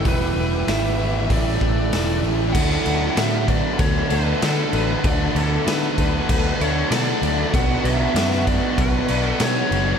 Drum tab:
CC |----------------|x-x-x-x-x-x-x-x-|x-x-x-x-x-x-x-x-|x-x-x-x-x-x-x-x-|
HH |o---o---o---o---|----------------|----------------|----------------|
SD |----o-------o---|----o-------o---|----o-------o---|----oo------o---|
BD |o-------o-o-----|o-----o-o-------|o-----o-o-------|o-----o-o-------|